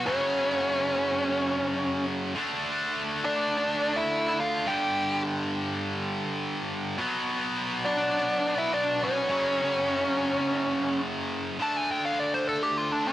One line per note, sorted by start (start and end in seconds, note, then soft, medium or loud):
0.06 2.35 F#2 medium
0.06 2.35 C#3 loud
0.06 2.37 F#3 loud
0.06 2.05 C#4 medium
0.06 2.05 C#5 medium
2.35 4.65 D3 medium
2.35 4.66 A3 medium
2.35 5.88 D4 loud
3.24 3.92 D4 medium
3.24 3.99 D5 medium
3.97 4.37 E4 medium
3.97 4.37 E5 medium
4.40 4.66 F4 medium
4.40 4.69 F5 medium
4.66 6.96 G2 medium
4.66 6.97 D3 loud
4.66 6.98 G3 loud
4.66 5.22 G4 medium
4.66 5.22 G5 loud
6.98 9.27 B2 medium
6.98 9.28 F#3 loud
6.98 9.29 B3 loud
7.85 8.54 D4 medium
7.85 8.59 D5 loud
8.58 8.71 E4 medium
8.58 8.72 E5 loud
8.73 9.00 D4 medium
8.73 9.02 D5 loud
9.04 11.00 C#4 medium
9.04 11.00 C#5 medium
9.28 11.58 F#2 medium
9.28 11.59 C#3 medium
9.28 11.59 F#3 loud
11.60 13.13 D3 medium
11.60 13.13 A3 medium
11.60 13.13 D4 medium
11.60 11.77 A5 medium
11.77 11.90 G#5 medium
11.91 12.04 G5 medium
12.05 12.20 F5 medium
12.20 12.33 D5 medium
12.34 12.47 C5 medium
12.49 12.62 A4 medium
12.63 12.77 G4 medium
12.77 12.92 F4 medium
12.92 13.05 D4 medium
13.07 13.13 D4 medium